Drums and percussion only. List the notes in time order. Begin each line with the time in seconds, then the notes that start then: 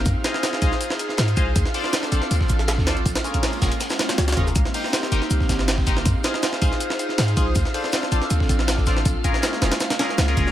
0.05 kick, closed hi-hat, shaker
0.24 snare, closed hi-hat, shaker
0.34 snare
0.43 snare, closed hi-hat, shaker
0.53 snare
0.61 kick, closed hi-hat, shaker
0.72 snare
0.81 closed hi-hat, shaker
0.90 snare
0.99 closed hi-hat, shaker
1.09 snare
1.17 snare, closed hi-hat, shaker
1.28 closed hi-hat
1.36 kick, closed hi-hat, shaker
1.56 kick, closed hi-hat, shaker
1.66 snare
1.74 closed hi-hat, open hi-hat
1.84 snare
1.93 snare, closed hi-hat, shaker
2.03 snare, closed hi-hat
2.12 closed hi-hat, shaker
2.22 snare
2.31 closed hi-hat, shaker
2.41 kick, snare
2.49 closed hi-hat, shaker
2.59 snare
2.68 snare, closed hi-hat, shaker
2.78 kick, snare
2.87 snare, closed hi-hat, shaker
2.97 closed hi-hat
3.06 kick, closed hi-hat, shaker
3.15 snare, closed hi-hat
3.24 closed hi-hat, shaker
3.34 kick, closed hi-hat
3.43 snare, closed hi-hat, open hi-hat
3.53 closed hi-hat
3.62 kick, snare, closed hi-hat, shaker
3.71 closed hi-hat
3.80 snare, closed hi-hat, shaker
3.90 snare, shaker
3.99 snare, closed hi-hat, shaker
4.09 snare, closed hi-hat, shaker
4.18 snare, closed hi-hat, shaker
4.28 snare, closed hi-hat, shaker
4.32 snare, closed hi-hat
4.37 kick, closed hi-hat
4.47 snare, shaker
4.55 kick, closed hi-hat, shaker
4.65 snare
4.74 closed hi-hat, open hi-hat
4.84 snare
4.93 snare, closed hi-hat, shaker
5.03 snare, closed hi-hat
5.12 closed hi-hat, shaker
5.22 snare
5.30 closed hi-hat, shaker
5.40 kick, snare
5.49 snare, closed hi-hat, shaker
5.59 snare
5.68 snare, closed hi-hat, shaker
5.78 kick, snare
5.87 kick, snare, closed hi-hat, shaker
5.97 snare
6.05 kick, closed hi-hat, shaker
6.24 snare, closed hi-hat, shaker
6.34 snare
6.43 snare, closed hi-hat, shaker
6.53 snare
6.62 kick, closed hi-hat, shaker
6.72 snare
6.80 closed hi-hat, shaker
6.90 snare
6.99 closed hi-hat, shaker
7.09 snare
7.18 snare, closed hi-hat, shaker
7.28 closed hi-hat
7.37 kick, closed hi-hat, shaker
7.55 kick, closed hi-hat, shaker
7.65 snare
7.74 closed hi-hat, open hi-hat
7.84 snare
7.92 snare, closed hi-hat, shaker
8.02 snare, closed hi-hat
8.12 closed hi-hat, shaker
8.22 snare
8.30 closed hi-hat, shaker
8.40 kick, snare
8.49 closed hi-hat, shaker
8.59 snare
8.68 snare, closed hi-hat, shaker
8.77 kick, snare
8.86 kick, snare, closed hi-hat, shaker
8.97 snare
9.05 kick, closed hi-hat, shaker
9.24 kick, closed hi-hat, shaker
9.34 snare
9.42 snare, closed hi-hat, shaker
9.53 snare
9.62 snare, closed hi-hat, shaker
9.72 snare, closed hi-hat
9.80 snare, closed hi-hat, shaker
9.90 snare, closed hi-hat
9.99 snare, closed hi-hat, shaker
10.09 snare
10.18 snare, closed hi-hat, shaker
10.28 closed hi-hat
10.37 kick, closed hi-hat, shaker
10.47 snare